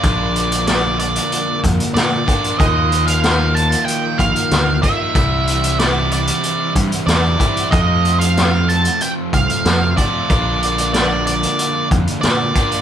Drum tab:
HH |x-xxx-xxx-xxx-xx|x-xxx-xxx-xxx-x-|x-xxx-xxx-xxx-xx|x-xxx-xxx-xxx-x-|
SD |----o-------o---|----o-------o---|----o-------o---|----o-------o---|
BD |o---------o---o-|o---------o---o-|o---------o---o-|o---------o---o-|

HH |x-xxx-xxx-xxx-xx|
SD |----o-------o---|
BD |o---------o---o-|